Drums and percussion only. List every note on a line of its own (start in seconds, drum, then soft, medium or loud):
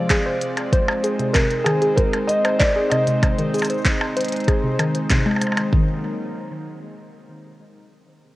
0.10 kick loud
0.10 clap loud
0.10 closed hi-hat medium
0.10 percussion blips medium
0.41 closed hi-hat medium
0.41 cabasa medium
0.57 closed hi-hat medium
0.57 percussion blips medium
0.73 kick loud
0.73 closed hi-hat medium
0.88 percussion blips medium
1.04 closed hi-hat medium
1.04 cabasa medium
1.20 closed hi-hat soft
1.35 kick loud
1.35 clap loud
1.35 percussion blips medium
1.51 closed hi-hat soft
1.67 closed hi-hat medium
1.67 percussion blips medium
1.82 closed hi-hat medium
1.98 kick loud
1.98 closed hi-hat medium
2.13 closed hi-hat soft
2.13 percussion blips medium
2.29 closed hi-hat medium
2.29 cabasa medium
2.45 closed hi-hat medium
2.45 percussion blips medium
2.60 kick loud
2.60 clap loud
2.91 closed hi-hat medium
2.91 percussion blips medium
3.07 closed hi-hat medium
3.07 cabasa medium
3.23 kick loud
3.23 closed hi-hat medium
3.23 percussion blips medium
3.38 closed hi-hat soft
3.54 closed hi-hat soft
3.54 cabasa medium
3.58 closed hi-hat medium
3.58 cabasa medium
3.62 closed hi-hat medium
3.62 cabasa medium
3.62 percussion blips medium
3.66 closed hi-hat medium
3.66 cabasa soft
3.70 cabasa soft
3.74 cabasa soft
3.78 cabasa soft
3.81 kick loud
3.81 clap loud
3.81 closed hi-hat medium
3.81 cabasa soft
4.01 percussion blips medium
4.17 closed hi-hat medium
4.20 closed hi-hat medium
4.24 closed hi-hat medium
4.28 closed hi-hat soft
4.32 closed hi-hat medium
4.36 closed hi-hat soft
4.40 closed hi-hat soft
4.44 kick loud
4.44 closed hi-hat soft
4.48 closed hi-hat medium
4.48 percussion blips medium
4.79 closed hi-hat medium
4.79 percussion blips medium
4.95 closed hi-hat medium
5.10 kick loud
5.10 clap loud
5.10 closed hi-hat medium
5.26 percussion blips soft
5.31 percussion blips soft
5.36 percussion blips soft
5.41 closed hi-hat medium
5.41 cabasa medium
5.41 percussion blips soft
5.47 percussion blips soft
5.52 percussion blips soft
5.57 closed hi-hat medium
5.57 percussion blips medium
5.73 kick loud